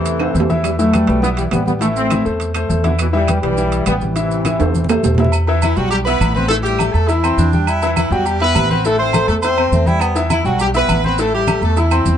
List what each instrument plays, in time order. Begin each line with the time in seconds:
Already playing: upright bass E2, trombone section C3 E3, grand piano A3 A4 C5
0.06 high conga, high timbale, maracas
0.20 grand piano A3 A4 C5, high conga, high timbale, claves
0.34 upright bass E2, grand piano A3 A4 C5, high conga, maracas
0.40 low timbale
0.50 grand piano E3 E4 E5, high conga, low timbale, maracas
0.63 trombone section E3 G3, high conga, high timbale, claves, maracas
0.78 grand piano E3 E4 E5, trombone section F#3 A3, high conga, maracas
0.93 grand piano G3 G4 B4, high conga, high timbale, claves, maracas
1.07 upright bass B1, grand piano G3 G4 B4, high conga, high timbale, maracas
1.22 grand piano E3 E4 E5, trombone section G3 B3, high conga, maracas
1.37 trombone section E3 G3, high conga, high timbale, maracas
1.51 upright bass A1, grand piano G3 G4 B4, trombone section G3 B3, high conga, high timbale, low timbale, claves, maracas
1.66 trombone section G3 B3, high conga, maracas
1.80 grand piano E3 E4 E5, trombone section E3 A3, high conga, high timbale, maracas
1.96 trombone section A3 C4, high conga, maracas
2.10 grand piano E3 E4 E5, high conga, high timbale, claves, maracas
2.25 upright bass E2, grand piano A3 A4 C5, maracas
2.40 high conga, high timbale, maracas
2.54 grand piano A3 A4 C5, high conga, high timbale, claves, maracas
2.69 upright bass E2, grand piano A3 A4 C5, high conga, maracas
2.84 trombone section B2 D3, grand piano E3 E4 E5, high conga, high timbale, maracas
2.98 trombone section B2 E3, high conga, high timbale, claves, maracas
3.13 grand piano E3 E4 E5, trombone section E3 G3, high conga
3.27 grand piano G3 G4 B4, high conga, high timbale, claves, maracas
3.42 upright bass B1, trombone section E3 G3, grand piano G3 G4 B4, high timbale, maracas
3.57 grand piano E3 E4 E5, high conga, maracas
3.72 high conga, high timbale, maracas
3.86 upright bass A1, grand piano G3 G4 B4, trombone section G3 B3, high conga, high timbale, claves, maracas
4.01 trombone section C3 E3, high conga, maracas
4.16 grand piano E3 E4 E5, high conga, high timbale, maracas
4.31 high conga, maracas
4.45 grand piano E3 E4 E5, high conga, high timbale, claves, maracas
4.60 upright bass E2, grand piano A3 A4 C5, high timbale, maracas
4.75 high conga, maracas
4.84 high conga
4.89 grand piano A3 A4 C5, low timbale, claves, maracas
5.03 upright bass E2, grand piano A3 A4 C5, low conga, low timbale, maracas
5.15 low conga, low timbale, maracas
5.19 grand piano E3 E4 E5
5.24 low conga
5.32 low agogo, claves, maracas
5.47 grand piano E3 E4 E5, high conga, low agogo
5.62 horn section E3 E4, high conga, low agogo, claves, maracas
5.76 upright bass B1, horn section F#3 F#4, grand piano G3 G4 G5, high conga, maracas
5.91 horn section G3 G4, high conga, low agogo, maracas
6.05 horn section B3 B4, grand piano E4 E5 E6, high conga, low agogo, maracas
6.21 upright bass A1, high conga, low agogo, claves, maracas
6.34 horn section B3 B4, grand piano C4 C5 C6, high conga, maracas
6.48 grand piano E3 E4 E5, horn section A3 A4, high conga, low agogo, maracas
6.63 horn section G3 G4, high conga, maracas
6.79 grand piano A3 A4 A5, high conga, low agogo, claves, maracas
6.92 upright bass E2, horn section A3 A4, low agogo, maracas
7.08 horn section E3 E4, grand piano E4 E5 E6, high conga, low agogo, maracas
7.23 grand piano C4 C5 C6, high conga, low agogo, claves, maracas
7.37 upright bass E2, baritone saxophone D4, high conga, maracas
7.53 grand piano G3 G4 G5, high conga, maracas
7.67 baritone saxophone E4, high conga, low agogo, claves, maracas
7.82 grand piano E3 E4 E5, high conga, low agogo, maracas
7.96 horn section E3 E4, high conga, low agogo, claves, maracas
8.10 upright bass E2, horn section F#3 F#4, grand piano G3 G4 G5, high conga, maracas
8.26 horn section G3 G4, high conga, low agogo, maracas
8.40 horn section B3 B4, grand piano E4 E5 E6, high conga, low agogo
8.55 upright bass A1, high conga, low timbale, low agogo, claves, maracas
8.70 horn section B3 B4, grand piano C4 C5 C6, high conga, maracas
8.85 grand piano E3 E4 E5, horn section A3 A4, high conga, low agogo, maracas
8.99 horn section C4 C5, high conga
9.13 grand piano A3 A4 A5, high conga, low agogo, claves, maracas
9.28 upright bass E2, horn section A3 A4, low agogo, maracas
9.43 horn section C4 C5, grand piano E4 E5 E6, high conga, low agogo, maracas
9.58 grand piano C4 C5 C6, high conga, low agogo, claves
9.72 upright bass E2, baritone saxophone A3, high conga, maracas
9.86 grand piano G3 G4 G5, baritone saxophone E4, high conga, maracas
10.01 baritone saxophone B3, high conga, low agogo, claves, maracas
10.15 grand piano E3 E4 E5, high conga, low agogo, maracas
10.30 horn section E3 E4, high conga, low agogo, claves, maracas
10.45 upright bass B1, horn section F#3 F#4, grand piano G3 G4 G5, high conga, maracas
10.59 horn section G3 G4, high conga, low agogo, maracas
10.74 horn section B3 B4, grand piano E4 E5 E6, high conga, low agogo, maracas
10.89 upright bass A1, high conga, low agogo, claves, maracas
11.03 horn section B3 B4, grand piano C4 C5 C6, high conga, maracas
11.18 grand piano E3 E4 E5, horn section A3 A4, high conga, low agogo, maracas
11.33 horn section G3 G4, high conga
11.47 grand piano A3 A4 A5, high conga, low agogo, claves, maracas
11.61 upright bass E2, horn section A3 A4, low agogo, maracas
11.77 horn section E3 E4, grand piano E4 E5 E6, high conga, low agogo, maracas
11.91 grand piano C4 C5 C6, high conga, low agogo, claves, maracas
12.05 upright bass E2, high conga, maracas